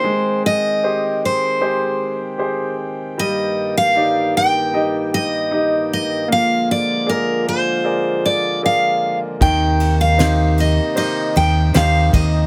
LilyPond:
<<
  \new Staff \with { instrumentName = "Steel-string acoustic guitar" } { \time 4/4 \key ees \major \tempo 4 = 77 c''8 ees''4 c''2 r8 | ees''8. f''8. g''4 ees''4 ees''8 | f''8 d''8 bes'8 c''4 d''8 f''8. r16 | g''8. f''8. ees''8 ees''8 g''8 f''8 ees''8 | }
  \new Staff \with { instrumentName = "Grand piano" } { \time 4/4 \key ees \major aes4 <g' aes' c''>4 <g' aes' c''>4 <g' aes' c''>4 | g4 <ees' g' d''>4 <ees' g' ees''>4 <ees' g' ees''>4 | bes4 <aes' bes' d''>4 <aes' bes' d''>4 <aes' bes' d''>4 | ees4 <ees' g' c''>4 <ees' g' c''>4 <ees' g' c''>4 | }
  \new Staff \with { instrumentName = "Harmonium" } { \clef bass \time 4/4 \key ees \major << { <ees g''>1~ | <ees g''>1 | <d f f'>1 | <c ees ees'>1 | } \\ { <aes c'>1 | <g, bes>1 | aes1 | r1 | } >> }
  \new Staff \with { instrumentName = "Fingered electric bass" } { \clef bass \time 4/4 \key ees \major r1 | r1 | r1 | ees,2 r8 ees,8 ees,8 ees,8 | }
  \new DrumStaff \with { instrumentName = "Drums" } \drummode { \time 4/4 r4 r4 r4 r4 | r4 r4 r4 r4 | r4 r4 r4 r4 | <bd cymr>8 cymr8 <cymr sn>8 cymr8 cymr8 cymr8 <cymr sn>8 <bd cymr>8 | }
>>